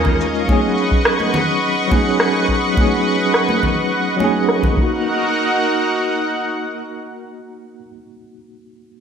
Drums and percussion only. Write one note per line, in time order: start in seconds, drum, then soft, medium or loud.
0.05 kick loud
0.05 low conga medium
0.21 cabasa medium
0.35 cabasa soft
0.48 kick loud
0.48 high conga medium
0.48 cabasa soft
0.78 cabasa medium
0.92 kick loud
0.92 cabasa soft
1.05 cross-stick medium
1.05 cabasa soft
1.20 high conga medium
1.34 low conga medium
1.34 cabasa medium
1.49 cabasa soft
1.63 cabasa soft
1.91 kick loud
1.91 high conga medium
1.91 cabasa medium
2.07 cabasa soft
2.20 cross-stick medium
2.49 kick medium
2.49 cabasa medium
2.77 kick loud
2.77 high conga medium
3.34 cross-stick medium
3.49 high conga medium
3.63 kick medium
3.63 low conga medium
4.20 high conga medium
4.49 cross-stick medium
4.63 kick medium
4.63 low conga medium
4.77 kick loud